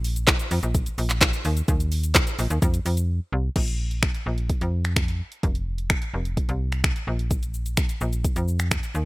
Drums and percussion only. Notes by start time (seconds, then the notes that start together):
0.04 open hi-hat, shaker
0.16 closed hi-hat, shaker
0.27 kick, snare, clap, closed hi-hat, shaker
0.39 closed hi-hat, shaker
0.51 open hi-hat, shaker
0.63 closed hi-hat, shaker
0.75 kick, closed hi-hat, shaker
0.86 closed hi-hat, shaker
0.98 open hi-hat, shaker
1.09 clap, closed hi-hat, shaker
1.21 kick, snare, clap, closed hi-hat, shaker
1.33 closed hi-hat, shaker
1.45 open hi-hat, shaker
1.57 closed hi-hat, shaker
1.68 kick, closed hi-hat, shaker
1.80 closed hi-hat, shaker
1.92 open hi-hat, shaker
2.03 closed hi-hat, shaker
2.15 kick, snare, clap, closed hi-hat, shaker
2.27 closed hi-hat, shaker
2.39 open hi-hat, shaker
2.50 closed hi-hat, shaker
2.62 kick, closed hi-hat, shaker
2.74 closed hi-hat, shaker
2.86 open hi-hat, shaker
2.97 closed hi-hat, shaker
3.56 kick, closed hi-hat, crash
3.68 closed hi-hat
3.91 closed hi-hat
4.03 finger snap, kick, closed hi-hat
4.14 closed hi-hat
4.38 closed hi-hat
4.50 kick, closed hi-hat
4.61 closed hi-hat
4.85 finger snap, closed hi-hat
4.96 finger snap, kick, closed hi-hat
5.08 closed hi-hat
5.32 closed hi-hat
5.43 kick, closed hi-hat
5.55 closed hi-hat
5.78 closed hi-hat
5.90 finger snap, kick, closed hi-hat
6.02 closed hi-hat
6.25 closed hi-hat
6.37 kick, closed hi-hat
6.49 closed hi-hat
6.72 finger snap, closed hi-hat
6.84 finger snap, kick, closed hi-hat
6.96 closed hi-hat
7.19 closed hi-hat
7.31 kick, closed hi-hat, shaker
7.43 closed hi-hat, shaker
7.54 shaker
7.66 closed hi-hat, shaker
7.77 finger snap, kick, closed hi-hat, shaker
7.89 closed hi-hat, shaker
8.01 shaker
8.13 closed hi-hat, shaker
8.24 kick, closed hi-hat, shaker
8.36 closed hi-hat, shaker
8.48 shaker
8.59 finger snap, closed hi-hat, shaker
8.71 finger snap, kick, closed hi-hat, shaker
8.83 closed hi-hat, shaker
8.95 shaker